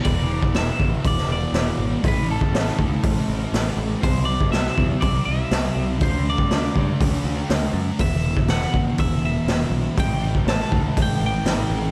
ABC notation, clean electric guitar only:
X:1
M:4/4
L:1/8
Q:1/4=121
K:Em
V:1 name="Clean electric guitar"
d2 e2 d d3 | B A4 z3 | c d e2 d e3 | c d4 z3 |
e2 f2 e e3 | g2 a2 g g3 |]